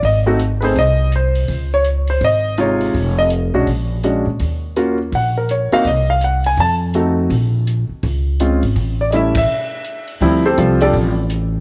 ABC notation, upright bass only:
X:1
M:4/4
L:1/8
Q:"Swing" 1/4=165
K:Bbm
V:1 name="Upright bass" clef=bass
A,,,4 C,,4 | D,,4 A,,,4 | F,,,3 _C,, B,,,3 B,, | E,,4 B,,,3 z |
C,,4 F,,4 | B,,,3 z D,,3 A,,, | =A,,,4 z4 | [K:Dm] D,,2 C,,2 A,,,4 |]